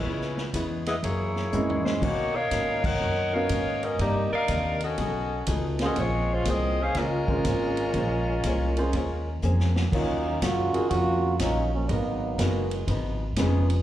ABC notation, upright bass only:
X:1
M:4/4
L:1/8
Q:"Swing" 1/4=121
K:Bbm
V:1 name="Upright bass" clef=bass
D,,2 _F,,2 G,,2 A,,2 | =B,,2 A,,2 ^F,,2 A,,2 | =G,, z E,,2 =B,,,2 ^C,,2 | B,,,2 C,,2 D,,2 A,,,2 |
B,,,2 C,,2 E,,2 F,,2 | [K:Ebm] E,,2 G,, z F,,2 B,,,2 | A,,,2 G,,,2 A,,,2 F,,,2 |]